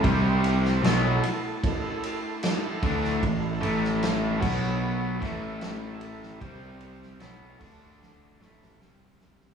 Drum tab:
CC |----------------|------x---------|------x---------|
RD |x-x-x-x-x-x-x-x-|x-x-x-----x-x-x-|x-x-x-----------|
SD |---oo-------o--o|---oo-----o-o--o|---oo---o-ooo-oo|
BD |o-------o-----o-|o-----o---o-----|o-----o---------|